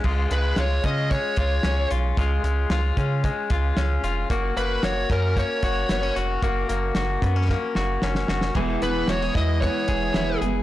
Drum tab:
CC |x---------------|----------------|----------------|----------------|
HH |--x-x-x-x-x-x-x-|x-x-x-x-x-x-x-x-|x-x-x-x-x-x-x-x-|x-x-x-x---------|
SD |----o-------o---|----o-------o---|----o-------o---|----o-o-o-o-oooo|
BD |o-----o-o-o-----|o-----o-o-o-----|o-----o-o-o-----|o-----o-o-------|

CC |x---------------|
HH |--x-x-x-x-x-x-x-|
SD |----o-o-----o---|
BD |o-----o-o-o-----|